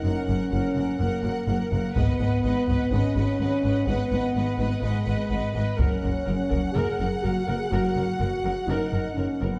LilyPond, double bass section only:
\new Staff \with { instrumentName = "Double bass section" } { \clef bass \time 4/4 \key fis \mixolydian \tempo 4 = 125 fis,,8 fis,,8 fis,,8 fis,,8 fis,,8 fis,,8 fis,,8 fis,,8 | gis,,8 gis,,8 gis,,8 gis,,8 gis,,8 gis,,8 gis,,8 gis,,8 | gis,,8 gis,,8 gis,,8 gis,,8 gis,,8 gis,,8 gis,,8 gis,,8 | fis,,8 fis,,8 fis,,8 fis,,8 fis,,8 fis,,8 fis,,8 fis,,8 |
fis,,8 fis,,8 fis,,8 fis,,8 fis,,8 fis,,8 fis,,8 fis,,8 | }